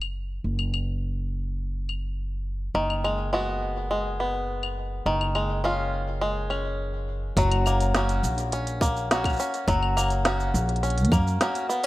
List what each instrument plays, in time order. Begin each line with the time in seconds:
Already playing: upright bass F#1
0.02 claves
0.44 upright bass F#1
0.59 claves
0.74 claves
1.89 claves
2.74 upright bass F#1, five-string banjo D#3
2.90 claves
3.04 five-string banjo G#3, claves
3.33 five-string banjo G#3 B3 F#4
3.91 five-string banjo G#3
4.20 five-string banjo B3
4.63 claves
5.06 upright bass F#1, five-string banjo D#3
5.21 claves
5.35 five-string banjo G#3, claves
5.64 five-string banjo G#3 C#4 F4
6.21 five-string banjo G#3
6.50 five-string banjo C#4, claves
7.37 upright bass F#1, five-string banjo F#3 F#4, kick, closed hi-hat, cabasa
7.52 closed hi-hat, claves
7.66 five-string banjo A#3, cabasa, claves
7.80 closed hi-hat, cabasa
7.95 five-string banjo A#3 C#4 F#4, snare, closed hi-hat, cabasa
8.09 closed hi-hat, cabasa
8.23 upright bass A#1, cabasa
8.38 closed hi-hat, cabasa
8.52 five-string banjo C#4, closed hi-hat, cabasa
8.67 closed hi-hat, cabasa
8.81 five-string banjo A#3, kick, cabasa
8.97 cabasa
9.11 five-string banjo A#3 C#4 F#4, snare, closed hi-hat, cabasa
9.24 kick, closed hi-hat, cabasa, claves
9.29 cabasa
9.33 cabasa
9.36 cabasa
9.40 five-string banjo C#4, cabasa
9.54 closed hi-hat, cabasa
9.68 upright bass F#1, five-string banjo F#3 F#4, kick, closed hi-hat, cabasa
9.83 claves
9.97 five-string banjo A#3, cabasa, claves
9.99 claves
10.01 claves
10.06 claves
10.08 closed hi-hat, cabasa, claves
10.25 five-string banjo A#3 C#4 F#4, snare, closed hi-hat, cabasa
10.40 cabasa
10.54 upright bass A#1, cabasa
10.69 closed hi-hat
10.76 closed hi-hat
10.83 five-string banjo C#4, closed hi-hat, cabasa
10.90 closed hi-hat
10.98 closed hi-hat, cabasa
11.05 closed hi-hat
11.12 upright bass F#2, five-string banjo A#3, kick, cabasa, claves
11.27 cabasa
11.41 five-string banjo A#3 C#4 F#4, snare, closed hi-hat, cabasa
11.55 closed hi-hat, cabasa
11.69 five-string banjo B3, cabasa